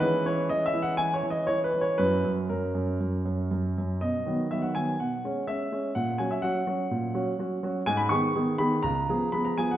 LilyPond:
<<
  \new Staff \with { instrumentName = "Grand piano" } { \time 4/4 \key fis \mixolydian \tempo 4 = 123 b'8 cis''8 \tuplet 3/2 { dis''8 e''8 fis''8 gis''8 cis''8 dis''8 cis''8 b'8 cis''8 } | b'4 ais'2~ ais'8 r8 | dis''4 e''16 fis''16 gis''8 fis''4 e''4 | fis''8 gis''16 e''16 fis''2. |
gis''16 b''16 cis'''4 b''8 ais''4 b''16 ais''16 gis''16 fis''16 | }
  \new Staff \with { instrumentName = "Grand piano" } { \clef bass \time 4/4 \key fis \mixolydian << { <gis cis'>1 | <fis cis'>1 | r1 | r1 |
r1 | } \\ { e8 e8 e8 e8 e8 e8 e8 e8 | fis,8 fis,8 fis,8 fis,8 fis,8 fis,8 fis,8 fis,8 | b,8 <dis fis b>8 <dis fis b>8 <dis fis b>8 b,8 <gis cis'>8 <gis cis'>8 <gis cis'>8 | ais,8 <fis cis' fis'>8 <fis cis' fis'>8 <fis cis' fis'>8 ais,8 <fis cis' fis'>8 <fis cis' fis'>8 <fis cis' fis'>8 |
gis,8 <dis b gis'>8 <dis b gis'>8 <dis b gis'>8 cis,8 <eis b gis'>8 <eis b gis'>8 <eis b gis'>8 | } >> }
>>